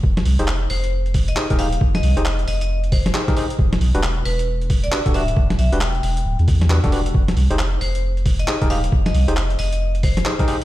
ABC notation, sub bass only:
X:1
M:4/4
L:1/16
Q:"Swing 16ths" 1/4=135
K:Fdor
V:1 name="Sub bass" clef=bass
F,,,2 C,, F,,,3 F,,,6 z E,,,3 | F,,,2 C,, F,,,3 F,,,6 z4 | =E,,,2 =B,,, E,,,3 E,,,6 z D,,,3 | =E,,,2 =B,,, E,,,3 E,,,2 D,,, =E,,4 E,,,3 |
F,,,2 C,, F,,,3 F,,,6 z E,,,3 | F,,,2 C,, F,,,3 F,,,6 z4 |]